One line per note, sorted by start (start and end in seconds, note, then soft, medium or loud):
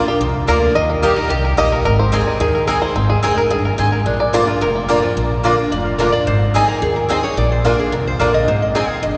0.00 0.17 A#2 medium
0.06 0.20 D4 soft
0.06 0.20 F4 medium
0.06 0.33 G4 medium
0.20 0.44 C2 medium
0.20 0.73 F2 loud
0.47 0.71 D2 medium
0.47 0.74 D3 medium
0.47 0.57 A#3 medium
0.47 0.74 A#3 medium
0.47 0.75 D4 medium
0.47 0.57 F4 loud
0.47 0.75 F4 medium
0.47 0.76 A#4 loud
0.47 0.57 D5 medium
0.47 0.57 A#5 medium
0.75 1.12 D#2 loud
0.75 1.28 D#3 medium
0.75 1.30 D#5 loud
0.90 1.17 D#4 medium
1.02 1.16 G3 medium
1.02 1.12 A#3 medium
1.02 1.16 A#3 loud
1.02 1.16 D#4 loud
1.02 1.12 G4 loud
1.02 1.19 G4 loud
1.02 1.15 G4 loud
1.02 1.42 A#4 medium
1.02 1.12 D#5 medium
1.02 1.12 A#5 medium
1.16 2.27 D#4 medium
1.16 1.30 D#4 medium
1.16 1.30 G4 medium
1.16 1.31 A#4 loud
1.30 1.54 C2 medium
1.30 1.83 A#2 loud
1.30 1.51 G4 medium
1.30 1.58 G4 medium
1.45 1.71 A#4 medium
1.57 1.81 A#1 medium
1.57 1.84 G3 medium
1.57 1.67 A#3 medium
1.57 1.84 A#3 medium
1.57 1.84 D#4 medium
1.57 1.67 G4 medium
1.57 1.84 G4 loud
1.57 1.86 D#5 loud
1.57 1.67 D#5 loud
1.57 1.67 A#5 medium
1.72 1.84 A#4 medium
1.85 2.22 G#1 loud
1.85 2.38 G#2 medium
1.85 2.00 A#4 loud
1.99 2.40 C5 loud
2.12 2.39 G#3 medium
2.12 2.22 C4 loud
2.12 2.39 C4 medium
2.12 2.39 D#4 loud
2.12 2.22 G#4 loud
2.12 2.40 G#4 loud
2.12 2.52 A#4 medium
2.12 2.22 D#5 medium
2.12 2.22 G#5 loud
2.27 2.66 D#4 medium
2.40 2.77 D#2 medium
2.40 2.93 D#3 loud
2.40 2.69 G#4 loud
2.55 2.66 A#4 medium
2.67 2.94 G#3 medium
2.67 2.77 C4 medium
2.67 2.94 C4 loud
2.67 2.95 D#4 loud
2.67 2.77 G#4 medium
2.67 2.95 G#4 loud
2.67 2.82 A#4 medium
2.67 2.77 D#5 medium
2.67 2.77 G#5 medium
2.82 3.08 C5 loud
2.96 3.14 G#1 loud
2.96 3.48 G#2 medium
2.96 3.34 C4 medium
3.10 3.38 G#4 loud
3.22 3.47 F1 medium
3.22 3.36 G#3 loud
3.22 3.32 C4 medium
3.22 3.37 C4 loud
3.22 3.37 D#4 loud
3.22 3.32 G#4 loud
3.22 3.35 G#4 loud
3.22 3.36 A#4 medium
3.22 3.32 D#5 loud
3.22 3.32 G#5 loud
3.37 3.51 D#4 medium
3.37 3.50 G#4 medium
3.37 3.51 A#4 medium
3.50 3.74 G1 medium
3.50 3.77 G2 medium
3.50 3.77 G#4 medium
3.65 3.91 A#4 medium
3.78 4.02 G#1 medium
3.78 4.04 G#2 medium
3.78 3.87 C4 medium
3.78 3.88 G#4 medium
3.78 4.06 G#4 medium
3.78 3.88 D#5 loud
3.78 3.88 G#5 loud
3.92 4.06 A#4 medium
4.06 4.42 A#1 loud
4.06 4.58 A#2 medium
4.06 4.45 D4 medium
4.20 4.34 D5 loud
4.33 4.47 D3 medium
4.33 4.47 A#3 medium
4.33 4.43 A#3 loud
4.33 4.47 D4 loud
4.33 4.43 F4 loud
4.33 4.46 F4 loud
4.33 4.48 C5 loud
4.33 4.43 D5 loud
4.33 4.43 A#5 loud
4.47 4.61 D4 soft
4.47 4.61 F4 medium
4.47 4.86 F4 medium
4.61 4.98 F1 medium
4.61 5.14 F2 loud
4.61 4.90 A#4 medium
4.75 5.14 A#3 medium
4.88 5.02 D3 medium
4.88 4.98 A#3 medium
4.88 5.02 A#3 medium
4.88 5.03 D4 loud
4.88 4.98 F4 medium
4.88 5.01 F4 medium
4.88 4.98 D5 loud
4.88 5.02 D5 medium
4.88 4.98 A#5 loud
5.02 5.17 F3 medium
5.02 5.17 D4 soft
5.02 5.16 F4 medium
5.16 5.53 A#1 loud
5.16 5.69 A#2 medium
5.43 5.57 D3 medium
5.43 5.53 A#3 medium
5.43 5.50 A#3 medium
5.43 5.58 A#3 medium
5.43 5.51 D4 medium
5.43 5.58 D4 loud
5.43 5.53 F4 loud
5.43 5.51 F4 medium
5.43 5.57 F4 loud
5.43 5.53 D5 loud
5.43 5.53 A#5 loud
5.58 5.72 D4 soft
5.58 5.71 F4 medium
5.71 6.08 F1 medium
5.71 6.24 F2 medium
5.71 5.85 D5 medium
5.85 5.99 F4 soft
5.98 6.12 D3 medium
5.98 6.08 A#3 medium
5.98 6.13 A#3 medium
5.98 6.06 A#3 medium
5.98 6.13 D4 medium
5.98 6.06 D4 medium
5.98 6.08 F4 loud
5.98 6.12 F4 medium
5.98 6.06 F4 medium
5.98 6.12 A#4 medium
5.98 6.09 D5 medium
5.98 6.09 A#5 medium
6.12 6.27 D4 medium
6.12 6.26 F4 medium
6.12 6.26 D5 loud
6.27 6.63 G#1 medium
6.27 6.79 G#2 medium
6.27 6.66 C5 medium
6.54 6.81 G#3 medium
6.54 6.63 C4 medium
6.54 6.81 C4 medium
6.54 6.61 C4 medium
6.54 6.81 D#4 loud
6.54 6.61 D#4 medium
6.54 6.64 G#4 medium
6.54 6.81 G#4 loud
6.54 6.61 G#4 medium
6.54 6.64 D#5 loud
6.54 6.64 G#5 loud
6.68 6.82 A#4 medium
6.82 7.18 D#2 medium
6.82 7.35 D#3 medium
6.82 6.96 G#4 medium
6.96 7.09 A#4 medium
7.09 7.23 G#3 medium
7.09 7.19 C4 medium
7.09 7.23 C4 medium
7.09 7.16 C4 medium
7.09 7.23 D#4 medium
7.09 7.16 D#4 medium
7.09 7.19 G#4 medium
7.09 7.22 G#4 loud
7.09 7.17 G#4 medium
7.09 7.23 C5 medium
7.09 7.19 D#5 loud
7.09 7.19 G#5 medium
7.23 7.37 D#4 medium
7.23 7.37 G#4 medium
7.23 7.37 C#5 loud
7.37 7.74 A#1 medium
7.37 7.90 A#2 medium
7.37 7.51 D5 medium
7.52 7.65 C5 medium
7.64 7.91 D3 medium
7.64 7.74 A#3 medium
7.64 7.91 A#3 loud
7.64 7.71 A#3 medium
7.64 7.92 D4 loud
7.64 7.72 D4 medium
7.64 7.74 F4 medium
7.64 7.92 F4 medium
7.64 7.72 F4 medium
7.64 7.79 A#4 medium
7.64 7.74 D5 medium
7.64 7.74 A#5 medium
7.79 7.93 G#4 medium
7.92 8.16 C2 medium
7.92 8.45 F2 medium
7.92 8.06 A#4 medium
8.07 8.20 C5 medium
8.19 8.44 A#1 medium
8.19 8.46 D3 loud
8.19 8.29 A#3 medium
8.19 8.47 A#3 medium
8.19 8.27 A#3 medium
8.19 8.27 D4 medium
8.19 8.47 D4 medium
8.19 8.29 F4 medium
8.19 8.27 F4 medium
8.19 8.47 F4 loud
8.19 8.29 D5 medium
8.19 8.34 D5 medium
8.19 8.30 A#5 medium
8.34 8.48 D#5 loud
8.47 8.84 G#1 loud
8.47 9.01 G#2 medium
8.47 8.62 C5 medium
8.62 8.75 D#5 medium
8.75 9.02 G#3 medium
8.75 8.84 C4 medium
8.75 9.02 C4 medium
8.75 8.82 C4 medium
8.75 9.02 D#4 medium
8.75 8.82 D#4 medium
8.75 8.84 G#4 loud
8.75 8.82 G#4 medium
8.75 9.02 G#4 medium
8.75 8.85 D#5 medium
8.75 8.90 G5 loud
8.75 8.85 G#5 medium
8.90 9.03 F5 loud
9.03 9.17 G1 medium
9.03 9.17 G2 medium
9.03 9.17 D#5 medium